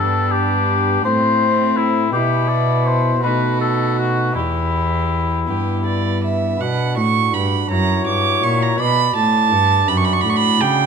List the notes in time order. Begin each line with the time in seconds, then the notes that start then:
Already playing: G2 B3 D4 G4 A4
0.31 G4
1.04 A2 A3 C4 E4 C5
1.76 E4
2.12 B2 B3 E4 G4
2.48 D5
2.86 C5
3.23 B2 A3 B3 D#4 F#4 B4
3.61 A4
3.98 F#4
4.35 E2 E4 G4
5.48 G2 B3 E4 G4
5.86 D5
6.24 E5
6.60 B2 D4 F#4 F#5
6.97 A2 C#6
7.34 G2 B5
7.70 F#2 E4 F#4 C#5 A#5
8.07 G2 D6
8.43 A#2 C#6
8.62 A#5
8.79 B2 D5 B5
9.16 A2 A5
9.51 G2
9.88 F#2 D4 F#4 B5
9.97 C#6
10.04 B5
10.13 C#6
10.21 A2 B5
10.29 C#6
10.36 B5
10.60 C#3 G5